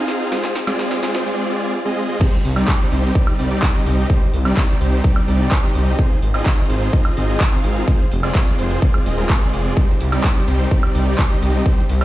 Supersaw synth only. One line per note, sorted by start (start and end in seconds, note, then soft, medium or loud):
0.00 0.29 C4 medium
0.00 0.29 D#4 medium
0.00 0.29 F4 medium
0.00 0.29 G#4 medium
0.00 0.29 F5 medium
0.32 0.46 G#3 medium
0.32 0.46 C4 medium
0.32 0.46 F4 medium
0.32 0.46 G#4 medium
0.32 0.46 C5 loud
0.67 1.00 G#3 loud
0.67 1.00 C4 loud
0.67 1.00 F4 medium
0.67 1.00 G#4 medium
0.67 1.00 D5 loud
1.03 1.24 G#3 medium
1.03 1.24 C4 medium
1.03 1.24 F4 medium
1.03 1.24 G#4 medium
1.03 1.24 C5 medium
1.26 1.47 G#3 medium
1.26 1.47 C4 medium
1.26 1.47 F4 medium
1.26 1.47 G#4 medium
1.26 1.47 D5 loud
1.50 1.73 G#3 medium
1.50 1.73 C4 medium
1.50 1.73 F4 medium
1.50 1.73 G#4 medium
1.50 1.73 D5 loud
1.85 2.18 G#3 medium
1.85 2.18 C4 medium
1.85 2.18 F4 medium
1.85 2.18 G#4 medium
1.85 2.18 D#5 loud
2.21 2.35 G3 medium
2.21 2.35 C4 medium
2.21 2.35 D#4 medium
2.21 2.35 G4 medium
2.21 2.35 C5 loud
2.56 2.89 G3 loud
2.56 2.89 C4 medium
2.56 2.89 D#4 medium
2.56 2.89 G4 medium
2.56 2.89 D5 loud
2.92 3.13 G3 medium
2.92 3.13 C4 medium
2.92 3.13 D#4 medium
2.92 3.13 G4 medium
2.92 3.13 C5 medium
3.15 3.36 G3 medium
3.15 3.36 C4 medium
3.15 3.36 D#4 medium
3.15 3.36 G4 medium
3.15 3.36 D5 loud
3.39 3.62 G3 loud
3.39 3.62 C4 medium
3.39 3.62 D#4 medium
3.39 3.62 G4 medium
3.39 3.62 D5 loud
3.74 4.07 G3 medium
3.74 4.07 C4 medium
3.74 4.07 D#4 medium
3.74 4.07 G4 medium
3.74 4.07 D#5 loud
4.10 4.24 G3 medium
4.10 4.24 C4 medium
4.10 4.24 D#4 medium
4.10 4.24 G4 medium
4.10 4.24 C5 loud
4.45 4.78 G3 loud
4.45 4.78 C4 medium
4.45 4.78 D#4 loud
4.45 4.78 G4 medium
4.45 4.78 D5 loud
4.81 5.01 G3 medium
4.81 5.01 C4 medium
4.81 5.01 D#4 medium
4.81 5.01 G4 medium
4.81 5.01 C5 medium
5.04 5.25 G3 medium
5.04 5.25 C4 medium
5.04 5.25 D#4 medium
5.04 5.25 G4 medium
5.04 5.25 D5 loud
5.28 5.51 G3 medium
5.28 5.51 C4 medium
5.28 5.51 D#4 medium
5.28 5.51 G4 medium
5.28 5.51 D5 loud
5.63 5.96 G3 medium
5.63 5.96 C4 medium
5.63 5.96 D#4 medium
5.63 5.96 G4 medium
5.63 5.96 D#5 loud
5.99 6.13 C4 medium
5.99 6.13 D#4 medium
5.99 6.13 F4 medium
5.99 6.13 G#4 medium
5.99 6.13 C5 medium
6.34 6.67 C4 loud
6.34 6.67 D#4 medium
6.34 6.67 F4 medium
6.34 6.67 G#4 medium
6.34 6.67 D#5 loud
6.70 6.90 C4 medium
6.70 6.90 D#4 medium
6.70 6.90 F4 medium
6.70 6.90 G#4 medium
6.70 6.90 C5 medium
6.93 7.14 C4 medium
6.93 7.14 D#4 medium
6.93 7.14 F4 medium
6.93 7.14 G#4 medium
6.93 7.14 D#5 loud
7.17 7.40 C4 medium
7.17 7.40 D#4 medium
7.17 7.40 F4 medium
7.17 7.40 G#4 medium
7.17 7.40 D#5 loud
7.52 7.85 C4 medium
7.52 7.85 D#4 medium
7.52 7.85 F4 medium
7.52 7.85 G#4 medium
7.52 7.85 F5 medium
7.88 8.02 G#3 medium
7.88 8.02 C4 medium
7.88 8.02 F4 medium
7.88 8.02 G#4 medium
7.88 8.02 C5 loud
8.23 8.56 G#3 loud
8.23 8.56 C4 medium
8.23 8.56 F4 medium
8.23 8.56 G#4 medium
8.23 8.56 D5 loud
8.59 8.79 G#3 medium
8.59 8.79 C4 medium
8.59 8.79 F4 medium
8.59 8.79 G#4 medium
8.59 8.79 C5 medium
8.82 9.03 G#3 medium
8.82 9.03 C4 medium
8.82 9.03 F4 medium
8.82 9.03 G#4 medium
8.82 9.03 D5 loud
9.06 9.15 G#3 medium
9.06 9.15 C4 medium
9.06 9.15 F4 medium
9.06 9.15 G#4 medium
9.06 9.15 D#5 medium
9.18 9.38 G#3 medium
9.18 9.38 C4 medium
9.18 9.38 F4 medium
9.18 9.38 G#4 medium
9.18 9.38 A#4 medium
9.41 9.74 G#3 medium
9.41 9.74 C4 medium
9.41 9.74 F4 medium
9.41 9.74 G#4 medium
9.41 9.74 D5 medium
9.77 9.91 G3 medium
9.77 9.91 C4 medium
9.77 9.91 D#4 medium
9.77 9.91 G4 medium
9.77 9.91 C5 loud
10.12 10.45 G3 loud
10.12 10.45 C4 loud
10.12 10.45 D#4 medium
10.12 10.45 G4 medium
10.12 10.45 D5 loud
10.48 10.68 G3 medium
10.48 10.68 C4 medium
10.48 10.68 D#4 medium
10.48 10.68 G4 medium
10.48 10.68 C5 medium
10.71 10.92 G3 medium
10.71 10.92 C4 medium
10.71 10.92 D#4 medium
10.71 10.92 G4 medium
10.71 10.92 D5 loud
10.95 11.18 G3 loud
10.95 11.18 C4 medium
10.95 11.18 D#4 medium
10.95 11.18 G4 medium
10.95 11.18 D5 loud
11.30 11.63 G3 medium
11.30 11.63 C4 medium
11.30 11.63 D#4 medium
11.30 11.63 G4 medium
11.30 11.63 D#5 medium
11.66 11.80 G3 medium
11.66 11.80 C4 medium
11.66 11.80 D#4 medium
11.66 11.80 G4 medium
11.66 11.80 C5 loud
12.01 12.05 G3 loud
12.01 12.05 C4 medium
12.01 12.05 D#4 medium
12.01 12.05 G4 medium
12.01 12.05 D5 loud